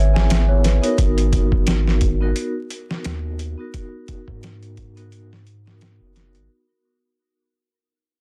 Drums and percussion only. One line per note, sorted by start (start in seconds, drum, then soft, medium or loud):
0.16 snare medium
0.30 snare loud
0.30 closed hi-hat medium
0.64 snare soft
0.64 closed hi-hat medium
0.84 closed hi-hat soft
0.98 kick loud
0.98 closed hi-hat medium
1.18 closed hi-hat soft
1.33 kick medium
1.33 closed hi-hat medium
1.52 kick medium
1.67 snare loud
1.67 closed hi-hat medium
1.87 snare soft
2.01 kick medium
2.01 closed hi-hat medium
2.36 closed hi-hat medium
2.70 closed hi-hat medium
2.91 snare medium
3.04 snare loud
3.04 closed hi-hat medium
3.39 closed hi-hat medium
3.74 kick medium
3.74 closed hi-hat medium
4.08 kick medium
4.08 closed hi-hat medium
4.28 kick medium
4.43 snare loud
4.43 closed hi-hat medium
4.63 closed hi-hat soft
4.77 kick medium
4.77 closed hi-hat medium
4.97 closed hi-hat soft
5.12 closed hi-hat medium
5.33 snare soft
5.47 closed hi-hat medium
5.67 snare soft
5.81 snare loud
5.81 closed hi-hat medium
6.16 snare soft
6.16 closed hi-hat medium
6.35 closed hi-hat soft